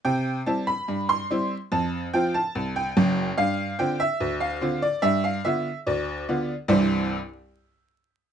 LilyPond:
<<
  \new Staff \with { instrumentName = "Honky-tonk piano" } { \time 2/4 \key c \major \tempo 4 = 72 g''8 a''16 b''8 c'''8. | a''8 g''16 a''8 g''8. | f''8 g''16 e''8 f''8 d''16 | e''16 f''16 e''8 d''4 |
<c, g, e g c' e' c''>8 r4. | }
  \new Staff \with { instrumentName = "Honky-tonk piano" } { \clef bass \time 2/4 \key c \major c8 <g c' e'>8 g,8 <g c' e'>8 | f,8 <f c' f'>8 c,8 <fis,, fis,>8 | g,8 <d c' f'>8 d,8 <d c' f'>8 | g,8 <d b f'>8 d,8 <d b f'>8 |
r2 | }
>>